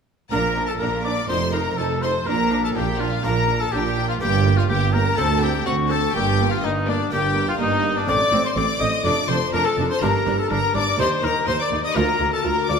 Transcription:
0.31 double bass section A#1, cello section A#2, harpsichord A#2 A#3 D4 F4, viola section D4, oboe A#4, violin section A#4 A#5
0.56 viola section D4
0.68 violin section A4 A5, oboe A4
0.80 double bass section A#1, cello section A#2, harpsichord A#2, viola section D4, oboe A#4, violin section A#4 A#5
1.05 viola section D4, oboe D5, violin section D5 D6
1.29 double bass section F1, cello section F2, harpsichord F2 A3 D#4 F4, viola section D#4, oboe C5, violin section C5 C6
1.53 viola section D#4, oboe A#4, violin section A#4 A#5
1.77 double bass section F1, harpsichord F2, cello section F2, viola section D#4, oboe A4, violin section A4 A5
2.03 viola section D#4, oboe C5, violin section C5 C6
2.26 double bass section A#1, harpsichord A#2, cello section A#2, viola section D4, oboe A#4, violin section A#4 A#5
2.51 viola section D4
2.64 oboe A4, violin section A4 A5
2.74 double bass section A#1, harpsichord A#2, cello section A#2, viola section D4, oboe G4, violin section G4 G5
3.00 viola section D4, violin section F4 F5, oboe F4
3.24 double bass section A#1, harpsichord A#2 A#3 D4 F4, cello section A#2, viola section D4, violin section A#4 A#5, oboe A#4
3.48 viola section D4
3.61 oboe A4, violin section A4 A5
3.72 double bass section A#1, harpsichord A#2, cello section A#2, viola section D4, oboe G4, violin section G4 G5
3.98 viola section D4
4.08 oboe F4, violin section F4 F5
4.20 double bass section G1, harpsichord G2 A#3 D4 G4, cello section G2, viola section A#3, violin section G4 G5, oboe G4
4.45 viola section A#3
4.56 violin section F4 F5, oboe F4
4.69 double bass section G1, cello section G2, harpsichord G2, viola section A#3, oboe G4, violin section G4 G5
4.93 viola section A#3, violin section A#4 A#5, oboe A#4
5.17 harpsichord D2 C4 D4 F#4, cello section D2, double bass section D2, viola section C4, violin section A4 A5, oboe A4
5.41 viola section C4, violin section G4 G5, oboe G4
5.65 double bass section D2, cello section D2, harpsichord D2, viola section C4, violin section F#4 F#5, oboe F#4
5.89 viola section C4, violin section A4 A5, oboe A4
6.13 double bass section G1, harpsichord G2, cello section G2, viola section A#3, violin section G4 G5, oboe G4
6.39 viola section A#3
6.50 violin section F4 F5, oboe F4
6.62 double bass section G1, harpsichord G2, cello section G2, viola section A#3, violin section D#4 D#5, oboe D#4
6.86 viola section A#3, violin section D4 D5, oboe D4
7.11 double bass section G1, harpsichord G2 A#3 D4 G4, cello section G2, viola section A#3, violin section G4 G5, oboe G4
7.35 viola section A#3
7.47 violin section F4 F5, oboe F4
7.58 double bass section G1, harpsichord G2, cello section G2, viola section A#3, violin section D#4 D#5, oboe D#4
7.83 viola section A#3
7.96 violin section D4 D5, oboe D4
8.07 double bass section A1, harpsichord A2 A3 D#4 C5, cello section A2, viola section C4, oboe D5, violin section D5 D6
8.32 double bass section A1, harpsichord A2, cello section A2, viola section C4
8.45 violin section C5 C6, oboe C5
8.56 double bass section A1, harpsichord A2, cello section A2, viola section C4, violin section D5 D6, oboe D5
8.79 double bass section A1, harpsichord A2, cello section A2, viola section C4, oboe D#5, violin section D#5 D#6
9.04 double bass section F1, harpsichord F2 A3 D4 A4, cello section F2, viola section D4, oboe D5, violin section D5 D6
9.28 double bass section F1, cello section F2, harpsichord F2, viola section D4, oboe C5, violin section C5 C6
9.52 double bass section F1, cello section F2, harpsichord F2, viola section D4, oboe A#4, violin section A#4 A#5
9.65 oboe A4, violin section A4 A5
9.76 double bass section F1, cello section F2, harpsichord F2, viola section D4
9.90 oboe C5, violin section C5 C6
10.01 double bass section G1, cello section G2, harpsichord G2 A#3 D4 G4, viola section D4, oboe A#4, violin section A#4 A#5
10.26 double bass section G1, cello section G2, harpsichord G2, viola section D4
10.39 oboe A4, violin section A4 A5
10.50 double bass section G1, cello section G2, harpsichord G2, viola section D4, oboe A#4, violin section A#4 A#5
10.74 double bass section G1, cello section G2, harpsichord G2, viola section D4, oboe D5, violin section D5 D6
10.98 cello section D#2, harpsichord D#2 D#4 G4, double bass section D#2, viola section D#4, oboe C5, violin section C5 C6
11.22 cello section D#2, harpsichord D#2, double bass section D#2, viola section D#4, violin section A#4 A#5, oboe A#4
11.47 cello section D#2, double bass section D#2, harpsichord D#2, viola section D#4, violin section C5 C6, oboe C5
11.59 violin section D5 D6, oboe D5
11.71 cello section D#2, harpsichord D#2, double bass section D#2, viola section D#4
11.83 violin section D#5 D#6, oboe D#5
11.95 cello section D2, double bass section D2, harpsichord D2 A#3 F4, viola section F4, violin section A#4 A#5, oboe A#4
12.20 double bass section D2, cello section D2, harpsichord D2, viola section F4
12.33 violin section A4 A5, oboe A4
12.44 double bass section D2, cello section D2, harpsichord D2, viola section F4, oboe A#4, violin section A#4 A#5
12.68 harpsichord D2, cello section D2, double bass section D2, viola section F4, oboe D5, violin section D5 D6

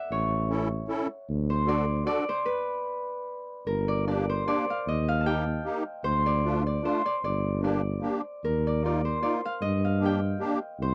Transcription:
Already playing: harp B4 D5 E5 F#5
0.11 tuba A1, harp C#5
0.49 accordion C#4 E4 A4
0.88 accordion C#4 E4 A4
1.29 tuba D2
1.50 harp C5
1.65 accordion D4 F#4 A4, harp D5
2.05 accordion D4 F#4 A4, harp D5
2.29 harp C5
2.45 harp B4
3.67 tuba G1, harp A#4
3.88 harp D5
4.06 accordion A#3 D4 G4, harp D5
4.29 harp C5
4.46 accordion A#3 D4 G4, harp D5
4.70 harp F5
4.87 tuba D#2, harp D#5
5.08 harp F5
5.21 harp A5
5.25 accordion A#3 D#4 G4, harp G5
5.64 accordion A#3 D#4 G4
6.04 tuba D2, harp C5
6.26 harp D5
6.45 accordion A3 D4 F4
6.66 harp D5
6.83 accordion A3 D4 F4, harp C5
7.06 harp D5
7.24 tuba G1, harp D5
7.61 accordion A#3 D4 G4, harp D5
8.01 accordion A#3 D4 G4
8.44 tuba D#2, harp A#4
8.67 harp D5
8.82 accordion A#3 D#4 F4, harp D5
9.05 harp C5
9.21 accordion A#3 D#4 F4, harp D5
9.45 harp F5
9.61 tuba G2, harp D#5
9.85 harp F5
10.00 accordion A#3 D4 G4
10.06 harp G5
10.39 accordion A#3 D4 G4
10.80 tuba C2, harp C5

